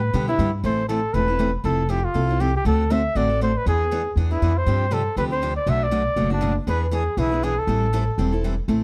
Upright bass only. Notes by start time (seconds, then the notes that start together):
Already playing: A2
0.14 B2
0.39 G2
0.64 A1
1.14 E1
1.64 F1
2.15 C2
2.65 D2
3.15 A1
3.66 E2
4.16 E2
4.42 F2
4.66 G2
5.16 D2
5.66 B1
6.16 F#1
6.67 E2
7.17 B1
7.67 A1
8.18 E1
8.68 A1